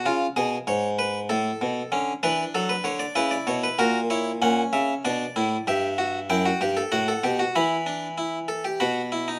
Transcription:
<<
  \new Staff \with { instrumentName = "Harpsichord" } { \time 3/4 \key b \minor \tempo 4 = 96 << { r2. | r8 b'8 a'16 b'16 cis''16 d''16 b'16 d''16 cis''16 b'16 | ais'8 cis''8 fis''8 e''8 d''4 | \key e \minor e''4 g''4 fis''4 |
b''2 b''4 | } \\ { eis'8 gis'8 cis''8 b'8 a'4 | cis'8 d'4. e'4 | fis'8 e'8 cis'4 d'8 e'8 | g'8 fis'8 e'16 fis'16 g'16 a'16 fis'16 a'16 g'16 fis'16 |
e'8 d'8 e'8 a'16 g'16 fis'8 e'16 dis'16 | } >> }
  \new Staff \with { instrumentName = "Harpsichord" } { \clef bass \time 3/4 \key b \minor cis8 b,8 gis,4 a,8 b,8 | d8 e8 fis8 d8 cis8 b,8 | ais,4 ais,8 cis8 b,8 a,8 | \key e \minor g,4 fis,8 g,8 a,8 b,8 |
e2 b,4 | }
>>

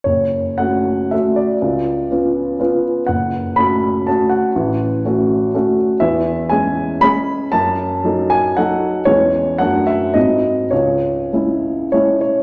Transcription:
\new Staff \with { instrumentName = "Grand piano" } { \time 3/4 \key fis \minor \tempo 4 = 119 << { cis''4 fis''4 e''8 d''8~ | d''2~ d''8 r8 | fis''4 b''4 a''8 fis''8~ | fis''2~ fis''8 r8 |
\key cis \minor e''4 gis''4 b''4 | a''4. gis''8 fis''4 | cis''4 fis''8 e''8 dis''4 | cis''2 cis''8 cis''8 | } \\ { fis,,4 <a cis' fis'>4 <a cis' fis'>4 | cis,4 <b cis' eis'>4 <b cis' eis'>4 | fis,,4 <a cis' fis'>4 <a cis' fis'>4 | a,,4 <a cis' fis'>4 <a cis' fis'>4 |
e,4 <gis cis' gis'>4 <gis cis' gis'>4 | fis,4 <fis dis' a'>4 <fis dis' a'>4 | <e, gis cis' gis'>4 <fis, a d' fis'>4 <gis, gis bis fis'>4 | cis,4 <gis cis' e'>4 <gis cis' e'>4 | } >> }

